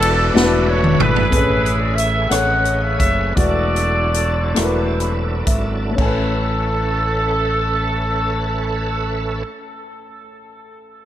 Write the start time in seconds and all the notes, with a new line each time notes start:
Already playing: E1 E3 A3 D4 E4 F#4 A4 B4
0.02 ride
0.33 E1 A3 D4 E4 F#4 A4 B4, snare
0.68 C#5
0.84 mid tom
1.00 G#1 E4 G#4 B4, mid tom
1.16 floor tom
1.30 A1 A2 A3 C4 C#4 G#4 B4, kick, closed hi-hat
1.38 C#4
1.66 closed hi-hat
1.80 D5
1.95 E5, closed hi-hat
2.30 A1 A3 C#4 G#4 B4 C#5 F#5, cross-stick, closed hi-hat
2.65 closed hi-hat
2.81 E5
2.99 F#1 E5, kick, closed hi-hat
3.36 E1 E3 F#3 A3 D4 E4 F#4 G#4 A4 D5, kick, closed hi-hat
3.44 A4
3.76 closed hi-hat
4.14 closed hi-hat
4.54 E1 A3 E4 F#4 A#4, cross-stick, closed hi-hat
4.64 B4
5.00 B5, closed hi-hat
5.47 G#1 E5, kick, closed hi-hat
5.91 A3
5.96 A1 C#4 A4, kick, crash
6.00 A3 A4 B4 G#5
6.05 B4